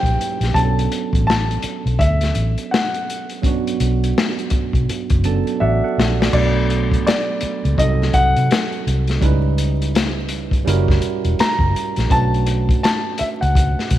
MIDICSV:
0, 0, Header, 1, 6, 480
1, 0, Start_track
1, 0, Key_signature, 2, "minor"
1, 0, Tempo, 722892
1, 360, Time_signature, 4, 2, 24, 8
1, 9287, End_track
2, 0, Start_track
2, 0, Title_t, "Grand piano"
2, 0, Program_c, 0, 0
2, 0, Note_on_c, 0, 79, 90
2, 337, Note_off_c, 0, 79, 0
2, 360, Note_on_c, 0, 81, 94
2, 833, Note_off_c, 0, 81, 0
2, 843, Note_on_c, 0, 81, 87
2, 1295, Note_off_c, 0, 81, 0
2, 1320, Note_on_c, 0, 76, 87
2, 1801, Note_on_c, 0, 78, 71
2, 1814, Note_off_c, 0, 76, 0
2, 2161, Note_off_c, 0, 78, 0
2, 3720, Note_on_c, 0, 76, 81
2, 4173, Note_off_c, 0, 76, 0
2, 4204, Note_on_c, 0, 74, 76
2, 4655, Note_off_c, 0, 74, 0
2, 4691, Note_on_c, 0, 74, 74
2, 5139, Note_off_c, 0, 74, 0
2, 5169, Note_on_c, 0, 75, 88
2, 5404, Note_on_c, 0, 78, 102
2, 5412, Note_off_c, 0, 75, 0
2, 5855, Note_off_c, 0, 78, 0
2, 7572, Note_on_c, 0, 82, 97
2, 8046, Note_on_c, 0, 81, 102
2, 8060, Note_off_c, 0, 82, 0
2, 8496, Note_off_c, 0, 81, 0
2, 8521, Note_on_c, 0, 81, 92
2, 8760, Note_on_c, 0, 76, 77
2, 8768, Note_off_c, 0, 81, 0
2, 8793, Note_off_c, 0, 76, 0
2, 8904, Note_on_c, 0, 78, 71
2, 9287, Note_off_c, 0, 78, 0
2, 9287, End_track
3, 0, Start_track
3, 0, Title_t, "Tine electric piano"
3, 0, Program_c, 1, 4
3, 0, Control_c, 1, 64, 127
3, 0, Note_on_c, 1, 54, 69
3, 0, Note_on_c, 1, 58, 62
3, 0, Note_on_c, 1, 61, 64
3, 0, Note_on_c, 1, 64, 63
3, 0, Note_on_c, 1, 67, 77
3, 340, Note_off_c, 1, 54, 0
3, 343, Note_off_c, 1, 58, 0
3, 348, Note_off_c, 1, 61, 0
3, 351, Note_off_c, 1, 64, 0
3, 355, Note_off_c, 1, 67, 0
3, 357, Note_on_c, 1, 54, 56
3, 365, Note_on_c, 1, 59, 53
3, 367, Control_c, 1, 64, 0
3, 374, Note_on_c, 1, 61, 51
3, 379, Note_on_c, 1, 62, 49
3, 385, Note_on_c, 1, 68, 47
3, 425, Note_off_c, 1, 68, 0
3, 430, Note_on_c, 1, 69, 59
3, 475, Control_c, 1, 64, 127
3, 2252, Note_off_c, 1, 54, 0
3, 2256, Note_off_c, 1, 59, 0
3, 2261, Note_off_c, 1, 61, 0
3, 2263, Note_off_c, 1, 62, 0
3, 2270, Note_on_c, 1, 54, 64
3, 2276, Note_on_c, 1, 59, 65
3, 2282, Note_on_c, 1, 61, 55
3, 2288, Note_off_c, 1, 69, 0
3, 2292, Note_on_c, 1, 62, 62
3, 2300, Note_on_c, 1, 66, 70
3, 3451, Note_off_c, 1, 54, 0
3, 3454, Note_off_c, 1, 59, 0
3, 3457, Note_off_c, 1, 61, 0
3, 3462, Note_off_c, 1, 62, 0
3, 3466, Note_off_c, 1, 66, 0
3, 3480, Note_on_c, 1, 54, 53
3, 3486, Note_on_c, 1, 59, 53
3, 3489, Note_on_c, 1, 61, 53
3, 3489, Note_on_c, 1, 81, 65
3, 3491, Note_on_c, 1, 62, 49
3, 3496, Note_on_c, 1, 69, 63
3, 3708, Note_off_c, 1, 81, 0
3, 3725, Note_on_c, 1, 78, 70
3, 3726, Note_on_c, 1, 74, 57
3, 3728, Note_off_c, 1, 69, 0
3, 3729, Note_on_c, 1, 66, 52
3, 3863, Note_off_c, 1, 74, 0
3, 3864, Note_off_c, 1, 66, 0
3, 3870, Note_off_c, 1, 78, 0
3, 3878, Note_on_c, 1, 78, 57
3, 3881, Note_on_c, 1, 69, 53
3, 3961, Note_off_c, 1, 78, 0
3, 3962, Note_off_c, 1, 69, 0
3, 3969, Note_on_c, 1, 76, 64
3, 4118, Note_on_c, 1, 74, 56
3, 4121, Note_on_c, 1, 66, 43
3, 4188, Note_off_c, 1, 76, 0
3, 4189, Note_off_c, 1, 54, 0
3, 4196, Note_off_c, 1, 59, 0
3, 4197, Note_on_c, 1, 54, 58
3, 4204, Note_on_c, 1, 59, 48
3, 4205, Note_off_c, 1, 61, 0
3, 4205, Note_off_c, 1, 62, 0
3, 4208, Control_c, 1, 64, 0
3, 4213, Note_on_c, 1, 57, 50
3, 4223, Note_on_c, 1, 62, 54
3, 4228, Note_on_c, 1, 69, 58
3, 4307, Control_c, 1, 64, 127
3, 4341, Note_off_c, 1, 74, 0
3, 4342, Note_off_c, 1, 66, 0
3, 5139, Note_off_c, 1, 54, 0
3, 5143, Note_off_c, 1, 59, 0
3, 5147, Note_off_c, 1, 57, 0
3, 5152, Note_off_c, 1, 62, 0
3, 5155, Note_off_c, 1, 69, 0
3, 5160, Note_on_c, 1, 54, 60
3, 5166, Note_on_c, 1, 60, 51
3, 5169, Control_c, 1, 64, 0
3, 5172, Note_on_c, 1, 66, 53
3, 5181, Note_on_c, 1, 63, 53
3, 5188, Note_on_c, 1, 69, 67
3, 5283, Control_c, 1, 64, 127
3, 6101, Note_off_c, 1, 54, 0
3, 6104, Note_off_c, 1, 60, 0
3, 6107, Note_off_c, 1, 66, 0
3, 6112, Note_off_c, 1, 63, 0
3, 6113, Note_on_c, 1, 55, 69
3, 6115, Note_off_c, 1, 69, 0
3, 6120, Note_on_c, 1, 61, 64
3, 6128, Note_on_c, 1, 63, 62
3, 6129, Control_c, 1, 64, 0
3, 6135, Note_on_c, 1, 64, 62
3, 6143, Note_on_c, 1, 71, 71
3, 6224, Control_c, 1, 64, 127
3, 7057, Note_off_c, 1, 55, 0
3, 7061, Note_off_c, 1, 61, 0
3, 7065, Note_off_c, 1, 63, 0
3, 7069, Note_off_c, 1, 64, 0
3, 7069, Note_on_c, 1, 55, 71
3, 7073, Note_off_c, 1, 71, 0
3, 7078, Note_on_c, 1, 61, 69
3, 7086, Note_on_c, 1, 64, 69
3, 7089, Control_c, 1, 64, 0
3, 7092, Note_on_c, 1, 66, 69
3, 7098, Note_on_c, 1, 70, 82
3, 7225, Control_c, 1, 64, 127
3, 8015, Note_off_c, 1, 55, 0
3, 8020, Note_off_c, 1, 61, 0
3, 8024, Note_off_c, 1, 64, 0
3, 8027, Note_off_c, 1, 66, 0
3, 8030, Note_off_c, 1, 70, 0
3, 8030, Note_on_c, 1, 57, 60
3, 8039, Note_on_c, 1, 61, 56
3, 8045, Note_on_c, 1, 62, 54
3, 8047, Control_c, 1, 64, 0
3, 8051, Note_on_c, 1, 66, 55
3, 8062, Note_on_c, 1, 71, 62
3, 8170, Control_c, 1, 64, 127
3, 9287, Note_off_c, 1, 57, 0
3, 9287, Note_off_c, 1, 61, 0
3, 9287, Note_off_c, 1, 62, 0
3, 9287, Note_off_c, 1, 66, 0
3, 9287, Note_off_c, 1, 71, 0
3, 9287, End_track
4, 0, Start_track
4, 0, Title_t, "Fingered electric bass"
4, 0, Program_c, 2, 33
4, 23, Note_on_c, 2, 34, 86
4, 105, Note_off_c, 2, 34, 0
4, 270, Note_on_c, 2, 34, 84
4, 349, Note_off_c, 2, 34, 0
4, 367, Note_on_c, 2, 35, 100
4, 572, Note_off_c, 2, 35, 0
4, 753, Note_on_c, 2, 33, 82
4, 1039, Note_off_c, 2, 33, 0
4, 1232, Note_on_c, 2, 35, 82
4, 1310, Note_off_c, 2, 35, 0
4, 1327, Note_on_c, 2, 38, 89
4, 1532, Note_off_c, 2, 38, 0
4, 1563, Note_on_c, 2, 33, 71
4, 1689, Note_off_c, 2, 33, 0
4, 2524, Note_on_c, 2, 35, 93
4, 2730, Note_off_c, 2, 35, 0
4, 3146, Note_on_c, 2, 35, 75
4, 3227, Note_off_c, 2, 35, 0
4, 3393, Note_on_c, 2, 30, 74
4, 3598, Note_off_c, 2, 30, 0
4, 3727, Note_on_c, 2, 33, 80
4, 3851, Note_off_c, 2, 33, 0
4, 3970, Note_on_c, 2, 34, 81
4, 4173, Note_off_c, 2, 34, 0
4, 4209, Note_on_c, 2, 35, 99
4, 4621, Note_off_c, 2, 35, 0
4, 5079, Note_on_c, 2, 37, 79
4, 5154, Note_off_c, 2, 37, 0
4, 5170, Note_on_c, 2, 36, 94
4, 5373, Note_off_c, 2, 36, 0
4, 5406, Note_on_c, 2, 36, 71
4, 5531, Note_off_c, 2, 36, 0
4, 5555, Note_on_c, 2, 48, 86
4, 5632, Note_off_c, 2, 48, 0
4, 5888, Note_on_c, 2, 36, 78
4, 6092, Note_off_c, 2, 36, 0
4, 6123, Note_on_c, 2, 37, 105
4, 7055, Note_off_c, 2, 37, 0
4, 7085, Note_on_c, 2, 30, 104
4, 7291, Note_off_c, 2, 30, 0
4, 7467, Note_on_c, 2, 28, 79
4, 7547, Note_off_c, 2, 28, 0
4, 7697, Note_on_c, 2, 30, 94
4, 7782, Note_off_c, 2, 30, 0
4, 7952, Note_on_c, 2, 34, 78
4, 8030, Note_off_c, 2, 34, 0
4, 8038, Note_on_c, 2, 35, 110
4, 8454, Note_off_c, 2, 35, 0
4, 8913, Note_on_c, 2, 37, 83
4, 9118, Note_off_c, 2, 37, 0
4, 9241, Note_on_c, 2, 35, 91
4, 9287, Note_off_c, 2, 35, 0
4, 9287, End_track
5, 0, Start_track
5, 0, Title_t, "Muted fingered electric bass strokes"
5, 1086, Note_on_c, 9, 29, 46
5, 1152, Note_off_c, 9, 29, 0
5, 3000, Note_on_c, 9, 29, 42
5, 3066, Note_off_c, 9, 29, 0
5, 3251, Note_on_c, 9, 29, 41
5, 3317, Note_off_c, 9, 29, 0
5, 4930, Note_on_c, 9, 29, 44
5, 4997, Note_off_c, 9, 29, 0
5, 7324, Note_on_c, 9, 29, 48
5, 7390, Note_off_c, 9, 29, 0
5, 7566, Note_on_c, 9, 29, 44
5, 7632, Note_off_c, 9, 29, 0
5, 8768, Note_on_c, 9, 29, 45
5, 8834, Note_off_c, 9, 29, 0
5, 9287, End_track
6, 0, Start_track
6, 0, Title_t, "Drums"
6, 19, Note_on_c, 9, 36, 84
6, 37, Note_on_c, 9, 42, 38
6, 86, Note_off_c, 9, 36, 0
6, 103, Note_off_c, 9, 42, 0
6, 138, Note_on_c, 9, 42, 61
6, 204, Note_off_c, 9, 42, 0
6, 272, Note_on_c, 9, 42, 42
6, 287, Note_on_c, 9, 38, 32
6, 338, Note_off_c, 9, 42, 0
6, 353, Note_off_c, 9, 38, 0
6, 362, Note_on_c, 9, 36, 89
6, 371, Note_on_c, 9, 42, 59
6, 429, Note_off_c, 9, 36, 0
6, 438, Note_off_c, 9, 42, 0
6, 524, Note_on_c, 9, 42, 48
6, 590, Note_off_c, 9, 42, 0
6, 609, Note_on_c, 9, 42, 72
6, 675, Note_off_c, 9, 42, 0
6, 749, Note_on_c, 9, 36, 75
6, 763, Note_on_c, 9, 42, 43
6, 816, Note_off_c, 9, 36, 0
6, 829, Note_off_c, 9, 42, 0
6, 863, Note_on_c, 9, 38, 88
6, 929, Note_off_c, 9, 38, 0
6, 1001, Note_on_c, 9, 42, 37
6, 1067, Note_off_c, 9, 42, 0
6, 1078, Note_on_c, 9, 42, 74
6, 1145, Note_off_c, 9, 42, 0
6, 1239, Note_on_c, 9, 42, 35
6, 1306, Note_off_c, 9, 42, 0
6, 1323, Note_on_c, 9, 36, 88
6, 1332, Note_on_c, 9, 42, 75
6, 1390, Note_off_c, 9, 36, 0
6, 1399, Note_off_c, 9, 42, 0
6, 1467, Note_on_c, 9, 42, 49
6, 1483, Note_on_c, 9, 38, 32
6, 1533, Note_off_c, 9, 42, 0
6, 1549, Note_off_c, 9, 38, 0
6, 1559, Note_on_c, 9, 42, 59
6, 1626, Note_off_c, 9, 42, 0
6, 1711, Note_on_c, 9, 42, 38
6, 1777, Note_off_c, 9, 42, 0
6, 1820, Note_on_c, 9, 38, 97
6, 1886, Note_off_c, 9, 38, 0
6, 1954, Note_on_c, 9, 42, 40
6, 2021, Note_off_c, 9, 42, 0
6, 2057, Note_on_c, 9, 42, 66
6, 2123, Note_off_c, 9, 42, 0
6, 2188, Note_on_c, 9, 42, 39
6, 2254, Note_off_c, 9, 42, 0
6, 2280, Note_on_c, 9, 36, 84
6, 2286, Note_on_c, 9, 42, 60
6, 2346, Note_off_c, 9, 36, 0
6, 2352, Note_off_c, 9, 42, 0
6, 2439, Note_on_c, 9, 42, 46
6, 2506, Note_off_c, 9, 42, 0
6, 2524, Note_on_c, 9, 42, 69
6, 2590, Note_off_c, 9, 42, 0
6, 2680, Note_on_c, 9, 42, 44
6, 2747, Note_off_c, 9, 42, 0
6, 2775, Note_on_c, 9, 38, 97
6, 2841, Note_off_c, 9, 38, 0
6, 2913, Note_on_c, 9, 42, 39
6, 2979, Note_off_c, 9, 42, 0
6, 2989, Note_on_c, 9, 42, 76
6, 2997, Note_on_c, 9, 36, 78
6, 3056, Note_off_c, 9, 42, 0
6, 3063, Note_off_c, 9, 36, 0
6, 3143, Note_on_c, 9, 36, 80
6, 3154, Note_on_c, 9, 42, 37
6, 3210, Note_off_c, 9, 36, 0
6, 3220, Note_off_c, 9, 42, 0
6, 3250, Note_on_c, 9, 42, 75
6, 3316, Note_off_c, 9, 42, 0
6, 3384, Note_on_c, 9, 42, 49
6, 3389, Note_on_c, 9, 36, 93
6, 3451, Note_off_c, 9, 42, 0
6, 3456, Note_off_c, 9, 36, 0
6, 3478, Note_on_c, 9, 42, 60
6, 3544, Note_off_c, 9, 42, 0
6, 3632, Note_on_c, 9, 42, 41
6, 3699, Note_off_c, 9, 42, 0
6, 3981, Note_on_c, 9, 38, 80
6, 4047, Note_off_c, 9, 38, 0
6, 4130, Note_on_c, 9, 38, 79
6, 4197, Note_off_c, 9, 38, 0
6, 4204, Note_on_c, 9, 36, 87
6, 4204, Note_on_c, 9, 49, 83
6, 4271, Note_off_c, 9, 36, 0
6, 4271, Note_off_c, 9, 49, 0
6, 4450, Note_on_c, 9, 42, 72
6, 4516, Note_off_c, 9, 42, 0
6, 4591, Note_on_c, 9, 36, 79
6, 4605, Note_on_c, 9, 42, 45
6, 4658, Note_off_c, 9, 36, 0
6, 4671, Note_off_c, 9, 42, 0
6, 4696, Note_on_c, 9, 42, 76
6, 4703, Note_on_c, 9, 38, 98
6, 4762, Note_off_c, 9, 42, 0
6, 4770, Note_off_c, 9, 38, 0
6, 4918, Note_on_c, 9, 42, 75
6, 4984, Note_off_c, 9, 42, 0
6, 5080, Note_on_c, 9, 42, 38
6, 5146, Note_off_c, 9, 42, 0
6, 5166, Note_on_c, 9, 36, 86
6, 5175, Note_on_c, 9, 42, 84
6, 5232, Note_off_c, 9, 36, 0
6, 5241, Note_off_c, 9, 42, 0
6, 5327, Note_on_c, 9, 38, 32
6, 5393, Note_off_c, 9, 38, 0
6, 5402, Note_on_c, 9, 42, 58
6, 5403, Note_on_c, 9, 36, 82
6, 5468, Note_off_c, 9, 42, 0
6, 5469, Note_off_c, 9, 36, 0
6, 5553, Note_on_c, 9, 42, 40
6, 5620, Note_off_c, 9, 42, 0
6, 5649, Note_on_c, 9, 42, 76
6, 5659, Note_on_c, 9, 38, 100
6, 5715, Note_off_c, 9, 42, 0
6, 5725, Note_off_c, 9, 38, 0
6, 5793, Note_on_c, 9, 42, 31
6, 5859, Note_off_c, 9, 42, 0
6, 5892, Note_on_c, 9, 42, 67
6, 5959, Note_off_c, 9, 42, 0
6, 6025, Note_on_c, 9, 42, 44
6, 6040, Note_on_c, 9, 38, 34
6, 6091, Note_off_c, 9, 42, 0
6, 6106, Note_off_c, 9, 38, 0
6, 6119, Note_on_c, 9, 36, 90
6, 6123, Note_on_c, 9, 42, 59
6, 6185, Note_off_c, 9, 36, 0
6, 6189, Note_off_c, 9, 42, 0
6, 6362, Note_on_c, 9, 42, 67
6, 6428, Note_off_c, 9, 42, 0
6, 6518, Note_on_c, 9, 42, 48
6, 6584, Note_off_c, 9, 42, 0
6, 6608, Note_on_c, 9, 42, 80
6, 6616, Note_on_c, 9, 38, 99
6, 6674, Note_off_c, 9, 42, 0
6, 6682, Note_off_c, 9, 38, 0
6, 6830, Note_on_c, 9, 42, 75
6, 6896, Note_off_c, 9, 42, 0
6, 6981, Note_on_c, 9, 36, 84
6, 6992, Note_on_c, 9, 42, 40
6, 7047, Note_off_c, 9, 36, 0
6, 7059, Note_off_c, 9, 42, 0
6, 7088, Note_on_c, 9, 42, 78
6, 7154, Note_off_c, 9, 42, 0
6, 7226, Note_on_c, 9, 36, 94
6, 7239, Note_on_c, 9, 38, 34
6, 7292, Note_off_c, 9, 36, 0
6, 7305, Note_off_c, 9, 38, 0
6, 7314, Note_on_c, 9, 42, 62
6, 7381, Note_off_c, 9, 42, 0
6, 7467, Note_on_c, 9, 42, 41
6, 7533, Note_off_c, 9, 42, 0
6, 7564, Note_on_c, 9, 42, 76
6, 7574, Note_on_c, 9, 38, 105
6, 7630, Note_off_c, 9, 42, 0
6, 7641, Note_off_c, 9, 38, 0
6, 7694, Note_on_c, 9, 36, 84
6, 7760, Note_off_c, 9, 36, 0
6, 7810, Note_on_c, 9, 42, 67
6, 7876, Note_off_c, 9, 42, 0
6, 7944, Note_on_c, 9, 42, 45
6, 7959, Note_on_c, 9, 38, 33
6, 8010, Note_off_c, 9, 42, 0
6, 8025, Note_off_c, 9, 38, 0
6, 8036, Note_on_c, 9, 36, 93
6, 8040, Note_on_c, 9, 42, 63
6, 8103, Note_off_c, 9, 36, 0
6, 8106, Note_off_c, 9, 42, 0
6, 8195, Note_on_c, 9, 42, 32
6, 8261, Note_off_c, 9, 42, 0
6, 8276, Note_on_c, 9, 42, 72
6, 8343, Note_off_c, 9, 42, 0
6, 8425, Note_on_c, 9, 36, 84
6, 8435, Note_on_c, 9, 42, 44
6, 8491, Note_off_c, 9, 36, 0
6, 8502, Note_off_c, 9, 42, 0
6, 8526, Note_on_c, 9, 42, 80
6, 8533, Note_on_c, 9, 38, 99
6, 8592, Note_off_c, 9, 42, 0
6, 8600, Note_off_c, 9, 38, 0
6, 8750, Note_on_c, 9, 42, 81
6, 8817, Note_off_c, 9, 42, 0
6, 8914, Note_on_c, 9, 42, 38
6, 8980, Note_off_c, 9, 42, 0
6, 9000, Note_on_c, 9, 36, 88
6, 9006, Note_on_c, 9, 42, 83
6, 9066, Note_off_c, 9, 36, 0
6, 9073, Note_off_c, 9, 42, 0
6, 9158, Note_on_c, 9, 38, 34
6, 9224, Note_off_c, 9, 38, 0
6, 9232, Note_on_c, 9, 42, 61
6, 9237, Note_on_c, 9, 36, 85
6, 9287, Note_off_c, 9, 36, 0
6, 9287, Note_off_c, 9, 42, 0
6, 9287, End_track
0, 0, End_of_file